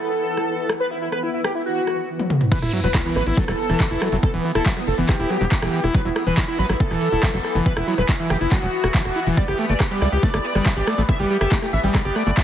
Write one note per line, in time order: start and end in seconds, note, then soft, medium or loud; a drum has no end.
0.00 2.09 E3 medium
0.00 2.09 B3 medium
0.00 0.72 A4 loud
0.37 cross-stick soft
0.69 cross-stick medium
0.80 0.87 B4 loud
0.91 0.98 E4 medium
1.02 1.09 E4 medium
1.12 1.19 B4 medium
1.12 cross-stick soft
1.23 1.30 E4 medium
1.34 1.41 E4 medium
1.44 1.52 G4 medium
1.44 cross-stick medium
1.55 1.62 E4 medium
1.66 2.09 F#4 loud
1.87 cross-stick soft
2.19 high tom medium
2.30 mid tom medium
2.41 mid tom medium
2.52 2.59 E3 loud
2.52 12.44 E3 medium
2.52 12.44 B3 medium
2.52 2.59 B4 loud
2.52 kick loud
2.52 closed hi-hat medium
2.52 crash loud
2.52 sub drop medium
2.62 2.68 E1 medium
2.62 2.73 E4 loud
2.62 2.70 E4 medium
2.62 cross-stick soft
2.62 closed hi-hat medium
2.73 2.80 F#3 medium
2.73 2.80 E4 medium
2.73 open hi-hat loud
2.84 2.90 E1 medium
2.84 2.88 F#3 medium
2.84 2.91 B4 medium
2.84 closed hi-hat medium
2.94 3.02 E4 medium
2.94 kick loud
2.94 cross-stick medium
2.94 clap loud
2.94 closed hi-hat medium
3.05 3.15 E3 medium
3.05 3.37 B3 medium
3.05 3.12 E4 medium
3.05 closed hi-hat medium
3.16 3.22 A1 loud
3.16 3.23 E3 loud
3.16 3.23 B4 medium
3.16 cross-stick soft
3.16 open hi-hat loud
3.27 3.33 A1 medium
3.27 3.34 E4 medium
3.27 3.37 E4 loud
3.27 closed hi-hat medium
3.37 3.45 F#3 medium
3.37 4.14 A4 loud
3.37 kick loud
3.37 closed hi-hat medium
3.48 3.54 E1 medium
3.48 3.52 F#3 medium
3.48 cross-stick medium
3.48 closed hi-hat medium
3.59 open hi-hat loud
3.69 3.76 E1 medium
3.69 3.80 E3 medium
3.69 cross-stick soft
3.69 closed hi-hat medium
3.80 kick loud
3.80 clap loud
3.80 closed hi-hat medium
3.91 3.97 F#1 medium
3.91 4.01 E4 loud
3.91 closed hi-hat medium
4.02 4.09 F#3 medium
4.02 4.08 E4 medium
4.02 cross-stick medium
4.02 open hi-hat medium
4.12 4.18 F#1 medium
4.12 4.17 F#3 medium
4.12 4.19 E4 medium
4.12 closed hi-hat medium
4.23 4.30 A4 medium
4.23 kick loud
4.23 cross-stick soft
4.23 closed hi-hat medium
4.34 4.40 E1 medium
4.34 4.44 E3 medium
4.34 4.41 B3 medium
4.34 closed hi-hat medium
4.45 4.52 E3 loud
4.45 4.52 B3 medium
4.45 open hi-hat loud
4.55 4.61 E1 medium
4.55 4.65 E4 loud
4.55 4.62 A4 loud
4.55 cross-stick medium
4.55 closed hi-hat medium
4.66 4.73 F#3 medium
4.66 4.73 B3 medium
4.66 kick loud
4.66 clap loud
4.66 closed hi-hat medium
4.77 4.81 F#3 medium
4.77 4.84 B3 medium
4.77 cross-stick soft
4.77 closed hi-hat medium
4.87 4.93 F#1 loud
4.87 4.95 A4 medium
4.87 open hi-hat loud
4.98 5.04 F#1 medium
4.98 5.08 E3 medium
4.98 5.05 B3 medium
4.98 closed hi-hat medium
5.09 5.16 E3 loud
5.09 5.86 G4 loud
5.09 kick loud
5.09 cross-stick medium
5.09 clap medium
5.09 closed hi-hat medium
5.19 5.26 E1 medium
5.19 5.30 E4 loud
5.19 closed hi-hat medium
5.30 5.37 F#3 medium
5.30 cross-stick soft
5.30 open hi-hat loud
5.41 5.47 E1 medium
5.41 5.45 F#3 medium
5.41 closed hi-hat medium
5.52 kick loud
5.52 clap loud
5.52 closed hi-hat medium
5.62 5.68 E1 medium
5.62 5.73 E3 medium
5.62 cross-stick medium
5.62 closed hi-hat medium
5.73 5.80 E3 loud
5.73 open hi-hat loud
5.84 5.90 E1 medium
5.84 5.94 E4 loud
5.84 cross-stick soft
5.84 closed hi-hat medium
5.94 6.02 F#3 medium
5.94 6.02 B4 loud
5.94 kick loud
5.94 closed hi-hat medium
6.05 6.11 E1 medium
6.05 6.10 F#3 medium
6.05 6.12 E4 medium
6.05 closed hi-hat medium
6.16 6.23 E4 medium
6.16 cross-stick medium
6.16 open hi-hat loud
6.27 6.33 E1 medium
6.27 6.37 E3 medium
6.27 6.34 B4 medium
6.27 closed hi-hat medium
6.37 6.45 E3 loud
6.37 6.45 E4 medium
6.37 kick loud
6.37 cross-stick soft
6.37 clap loud
6.37 closed hi-hat medium
6.48 6.58 E4 loud
6.48 6.55 E4 medium
6.48 closed hi-hat medium
6.59 6.65 A1 loud
6.59 6.66 F#3 medium
6.59 6.66 B4 medium
6.59 open hi-hat loud
6.69 6.76 A1 medium
6.69 6.74 F#3 medium
6.69 6.77 E4 medium
6.69 cross-stick medium
6.69 closed hi-hat medium
6.80 7.57 A4 loud
6.80 kick loud
6.80 closed hi-hat medium
6.91 6.97 E1 medium
6.91 7.01 E3 medium
6.91 cross-stick soft
6.91 closed hi-hat medium
7.02 7.09 E3 loud
7.02 open hi-hat loud
7.12 7.18 E1 medium
7.12 7.23 E4 loud
7.12 closed hi-hat medium
7.23 7.30 F#3 medium
7.23 kick loud
7.23 cross-stick medium
7.23 clap loud
7.23 closed hi-hat medium
7.34 7.40 F#1 medium
7.34 7.38 F#3 medium
7.34 closed hi-hat medium
7.44 cross-stick soft
7.44 open hi-hat loud
7.55 7.61 F#1 medium
7.55 7.65 E3 medium
7.55 closed hi-hat medium
7.66 7.73 B4 loud
7.66 kick loud
7.66 closed hi-hat medium
7.77 7.83 E1 medium
7.77 7.87 E4 loud
7.77 7.84 E4 medium
7.77 cross-stick medium
7.77 closed hi-hat soft
7.87 7.95 F#3 medium
7.87 7.95 E4 medium
7.87 open hi-hat loud
7.98 8.04 E1 medium
7.98 8.02 F#3 medium
7.98 8.05 B4 medium
7.98 cross-stick soft
7.98 closed hi-hat medium
8.09 8.16 E4 medium
8.09 kick loud
8.09 clap loud
8.09 closed hi-hat medium
8.19 8.30 E3 medium
8.19 8.27 E4 medium
8.19 closed hi-hat medium
8.30 8.36 F#1 loud
8.30 8.37 E3 loud
8.30 8.37 G4 medium
8.30 cross-stick medium
8.30 open hi-hat loud
8.41 8.47 F#1 medium
8.41 8.51 E4 loud
8.41 8.48 E4 medium
8.41 closed hi-hat soft
8.52 8.59 F#3 medium
8.52 9.29 F#4 loud
8.52 kick loud
8.52 cross-stick soft
8.52 clap medium
8.52 closed hi-hat medium
8.62 8.68 E1 medium
8.62 8.67 F#3 medium
8.62 closed hi-hat medium
8.73 open hi-hat loud
8.84 8.90 E1 medium
8.84 8.88 F#4 loud
8.84 cross-stick medium
8.84 closed hi-hat medium
8.94 9.02 E3 loud
8.94 kick loud
8.94 clap loud
8.94 closed hi-hat medium
9.05 9.11 E1 medium
9.05 cross-stick soft
9.05 closed hi-hat medium
9.16 9.20 E4 medium
9.16 open hi-hat loud
9.27 9.33 E1 medium
9.27 9.37 E3 loud
9.27 closed hi-hat medium
9.37 9.45 G3 loud
9.37 9.45 D5 loud
9.37 kick loud
9.37 closed hi-hat medium
9.48 9.54 G1 medium
9.48 9.58 G4 loud
9.48 9.55 G4 medium
9.48 cross-stick soft
9.48 closed hi-hat medium
9.59 9.66 A3 medium
9.59 9.66 G4 medium
9.59 open hi-hat loud
9.69 9.76 G1 medium
9.69 9.74 A3 medium
9.69 9.77 D5 medium
9.69 closed hi-hat soft
9.80 9.87 G4 medium
9.80 kick loud
9.80 cross-stick medium
9.80 clap loud
9.80 closed hi-hat medium
9.91 10.01 G3 medium
9.91 10.23 B3 loud
9.91 9.98 G4 medium
9.91 closed hi-hat medium
10.02 10.08 C#2 loud
10.02 10.09 G3 loud
10.02 10.09 D5 medium
10.02 cross-stick soft
10.02 open hi-hat medium
10.12 10.18 C#2 medium
10.12 10.20 G4 medium
10.12 10.23 G4 loud
10.12 closed hi-hat soft
10.23 10.30 A3 medium
10.23 11.00 D5 loud
10.23 kick loud
10.23 closed hi-hat medium
10.34 10.40 G1 medium
10.34 10.38 A3 medium
10.34 cross-stick medium
10.34 closed hi-hat medium
10.44 10.51 B3 medium
10.44 open hi-hat loud
10.55 10.61 G1 medium
10.55 10.65 G3 medium
10.55 10.62 B3 medium
10.55 cross-stick soft
10.55 closed hi-hat medium
10.66 10.73 G3 loud
10.66 kick loud
10.66 clap loud
10.66 closed hi-hat medium
10.77 10.83 A1 medium
10.77 10.87 G4 loud
10.77 closed hi-hat medium
10.87 10.95 A3 medium
10.87 cross-stick medium
10.87 open hi-hat medium
10.98 11.04 A1 medium
10.98 11.02 A3 medium
10.98 closed hi-hat soft
11.09 11.16 E5 loud
11.09 kick loud
11.09 cross-stick soft
11.09 closed hi-hat medium
11.19 11.26 G1 medium
11.19 11.30 G3 medium
11.19 11.27 G4 medium
11.19 closed hi-hat medium
11.30 11.37 G3 loud
11.30 11.37 G4 medium
11.30 open hi-hat loud
11.41 11.47 G1 medium
11.41 11.51 G4 loud
11.41 11.48 E5 loud
11.41 cross-stick medium
11.41 closed hi-hat medium
11.52 11.59 A3 medium
11.52 11.59 G4 medium
11.52 kick loud
11.52 clap loud
11.52 closed hi-hat medium
11.62 11.67 A3 medium
11.62 11.70 G4 medium
11.62 cross-stick soft
11.62 closed hi-hat medium
11.73 11.79 A1 loud
11.73 11.80 E5 medium
11.73 open hi-hat medium
11.84 11.90 A1 medium
11.84 11.94 G3 medium
11.84 11.91 G4 medium
11.84 closed hi-hat medium
11.94 12.02 G3 loud
11.94 12.44 D5 loud
11.94 kick loud
11.94 cross-stick medium
11.94 clap medium
11.94 closed hi-hat medium
12.05 12.11 G1 medium
12.05 12.15 G4 loud
12.05 closed hi-hat medium
12.16 12.23 A3 medium
12.16 cross-stick soft
12.16 open hi-hat loud
12.27 12.33 G1 medium
12.27 12.31 A3 medium
12.27 closed hi-hat medium
12.37 kick loud
12.37 clap loud
12.37 closed hi-hat medium